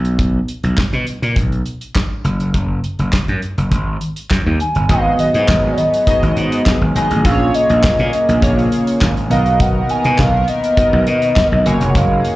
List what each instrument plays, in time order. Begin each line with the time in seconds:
Already playing: slap bass B1
0.05 closed hi-hat
0.19 kick, closed hi-hat
0.48 closed hi-hat
0.64 slap bass B1, closed hi-hat
0.77 kick, snare, clap
0.93 slap bass B2, closed hi-hat
1.07 closed hi-hat
1.22 slap bass A#2, closed hi-hat
1.36 slap bass B1, kick, closed hi-hat
1.52 closed hi-hat
1.66 closed hi-hat
1.81 closed hi-hat
1.95 kick, snare, clap
2.24 slap bass F#1, closed hi-hat
2.40 closed hi-hat
2.54 slap bass F#1, kick, closed hi-hat
2.84 closed hi-hat
2.99 slap bass F#1, closed hi-hat
3.13 muted slap bass stroke, kick, snare, clap
3.28 slap bass F#2, closed hi-hat
3.42 closed hi-hat
3.58 slap bass F#1, closed hi-hat
3.72 slap bass G#1, kick, closed hi-hat
4.01 closed hi-hat
4.16 closed hi-hat
4.30 slap bass F#2, kick, snare, clap
4.46 slap bass D#2
4.60 soft synth lead G#5, closed hi-hat
4.75 slap bass G1, closed hi-hat
4.89 slap bass G#1, analog synth pad F#3 B3 G#4, analog polysynth B3 D#4 F#4 G#4 D#5, soft synth lead F5, kick, closed hi-hat
5.19 soft synth lead D#5, closed hi-hat
5.34 slap bass G#2, closed hi-hat
5.48 slap bass G#1, soft synth lead D#5, kick, snare, clap
5.72 soft synth lead D5
5.78 soft synth lead D#5, closed hi-hat
5.94 closed hi-hat
6.07 analog polysynth B3 D#4 F#4 G#4 D#5, kick, closed hi-hat
6.23 slap bass G#1, closed hi-hat
6.36 slap bass G#2, closed hi-hat
6.52 closed hi-hat
6.66 kick, snare, clap
6.81 slap bass G#1
6.95 slap bass G#1, analog polysynth B3 D#4 F#4 G#4 D#5, soft synth lead G#5, closed hi-hat
7.11 slap bass A1, closed hi-hat
7.24 slap bass A#1, analog synth pad C#3 A#3, analog polysynth A#3 C#4 F4 G#4 B4, soft synth lead F5, kick, closed hi-hat
7.32 analog polysynth C#5
7.54 soft synth lead D#5, closed hi-hat
7.70 slap bass A#1, closed hi-hat
7.83 muted slap bass stroke, kick, snare, clap
7.99 slap bass A#2, closed hi-hat
8.13 soft synth lead D#5, closed hi-hat
8.29 slap bass A#1, closed hi-hat
8.42 slap bass A#1, analog polysynth A#3 C#4 F4 G#4 C#5, kick, closed hi-hat
8.59 closed hi-hat
8.72 closed hi-hat
8.87 closed hi-hat
9.01 slap bass G#1, kick, snare, clap
9.17 closed hi-hat
9.30 slap bass B1, analog synth pad D#3 B3 A#4, analog polysynth B3 D#4 F#4 A#4 D#5, soft synth lead F5, closed hi-hat
9.46 closed hi-hat
9.60 soft synth lead F#5, kick, closed hi-hat
9.89 soft synth lead G#5, closed hi-hat
10.04 slap bass B2, closed hi-hat
10.18 slap bass B1, soft synth lead F5, kick, snare, clap
10.48 soft synth lead D#5, closed hi-hat
10.64 closed hi-hat
10.77 analog polysynth B3 D#4 F#4 A#4 D#5, kick, closed hi-hat
10.93 slap bass B1
11.07 slap bass B2, closed hi-hat
11.22 closed hi-hat
11.36 kick, snare, clap
11.52 slap bass B1
11.66 slap bass F#1, analog synth pad D#3 A#3 G#4, analog polysynth A#3 D#4 F#4 G#4 C#5, soft synth lead G#5, closed hi-hat
11.81 slap bass F1, closed hi-hat
11.90 soft synth lead F#5
11.95 slap bass F#1, soft synth lead F5, kick, closed hi-hat
12.25 closed hi-hat